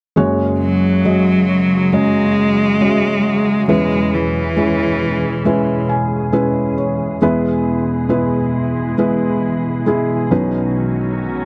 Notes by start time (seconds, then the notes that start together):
0.16 F#1 F#2 C#3 F#3 G#3 C#4 F#4 G#4 C#5
0.60 F#3
1.05 G#3 C#4 F#4 D#5
1.93 G#3 C#4 F#4 D#5
2.81 G#3 C#4 F#4 D#5
2.88 E5
3.68 E2 B2 E3 G#3 C#4 E4 B4
4.14 E3
4.56 G#3 C#4 E4 C#5
5.45 G#3 C#4 E4 B4
5.89 G#5
6.32 G#3 C#4 E4 B4 E5
6.78 C#5
7.22 E2 E3 G#3 B3 E4 B4
8.09 G#3 B3 E4 B4
8.98 G#3 B3 E4 B4
9.86 G#3 B3 E4 G#4
10.31 B1 B2 D#3 F#3 C#4 D#4 F#4 B4